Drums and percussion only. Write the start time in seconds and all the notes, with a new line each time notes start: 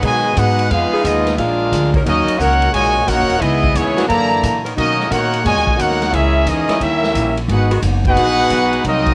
0.03 kick, ride
0.37 kick, hi-hat pedal, ride
0.59 ride
0.70 kick, ride
1.04 kick, hi-hat pedal, ride
1.26 snare, ride
1.38 kick, ride
1.72 kick, hi-hat pedal, ride
1.94 kick, ride
2.06 kick, ride
2.28 ride
2.39 kick, hi-hat pedal
2.62 ride
2.73 kick, ride
3.07 kick, hi-hat pedal, ride
3.30 ride
3.41 kick, ride
3.64 kick
3.75 kick, hi-hat pedal, ride
3.98 snare, ride
4.09 kick, ride
4.43 kick, hi-hat pedal, ride
4.66 ride
4.77 kick, ride
5.00 snare
5.11 kick, hi-hat pedal, ride
5.33 ride
5.45 kick, ride
5.67 kick
5.79 kick, hi-hat pedal, ride
5.91 snare
6.02 snare, ride
6.13 kick, ride
6.46 kick, hi-hat pedal, ride
6.69 snare, ride
6.81 kick, ride
7.03 snare
7.15 kick, hi-hat pedal, ride
7.37 ride
7.49 kick, ride
7.71 ride
7.82 kick, hi-hat pedal, ride
8.05 kick, ride
8.16 kick, ride
8.50 kick, hi-hat pedal, ride
8.73 ride
8.84 kick, ride
9.06 kick, ride